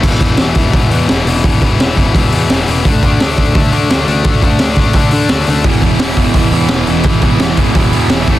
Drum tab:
CC |x-------|--------|--------|--------|
HH |oooooooo|oooooooo|oooooooo|oooooooo|
SD |--o---o-|--o---o-|--o---o-|--o---o-|
BD |oo-oo---|oo-oo---|oo-oo---|oo-oo---|

CC |--------|--------|
HH |oooooooo|oooooooo|
SD |--o---o-|--o---o-|
BD |oo-oo---|oo-oo--o|